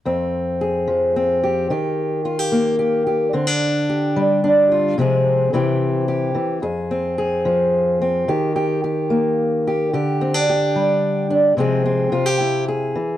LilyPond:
\new Staff \with { instrumentName = "Steel-string acoustic guitar" } { \time 3/4 \key f \minor \tempo 4 = 109 << { c'4 aes'4 c'8 g'8 | g'4 f'16 g'8. g'8 g'8 | c'16 d'8. g'4 d'8 f'8 | <f aes c' aes'>4 <e c' e' g'>4 g'4 |
aes'8 c'8 aes'4. c'8 | g'8 g'8 g'4. g'8 | g'8 c'16 d'16 g'4. d'8 | <f aes c' aes'>8 c'8 f'16 g'16 e'8 aes'4 | } \\ { f,4. f4. | ees4. bes4. | d4. g4. | c4 c4. e8 |
f,4. f4. | ees4. bes4. | d4. g4. | c4 c4. e8 | } >> }